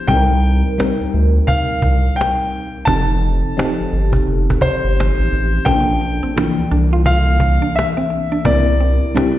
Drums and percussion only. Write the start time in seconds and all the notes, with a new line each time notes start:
0.08 cajon bass
0.42 cajon slap
0.67 cajon slap
0.80 cajon slap
1.03 cajon slap
1.48 cajon bass
1.82 cajon bass
2.21 cajon slap
2.52 cajon slap
2.74 cajon slap
2.78 cajon slap
2.87 cajon bass
3.21 cajon slap
3.59 cajon slap
3.91 cajon slap
4.13 cajon bass
4.27 cajon slap
4.50 cajon bass, cajon slap
4.61 cajon bass
5.00 cajon slap
5.31 cajon slap
5.53 cajon slap
5.57 cajon slap
5.66 cajon bass
6.00 cajon slap
6.25 cajon slap
6.38 cajon slap
6.61 cajon slap
7.06 cajon bass
7.40 cajon bass
7.79 cajon slap
8.10 cajon slap
8.32 cajon slap
8.35 cajon slap
8.45 cajon bass
8.79 cajon slap
9.04 cajon slap
9.17 cajon slap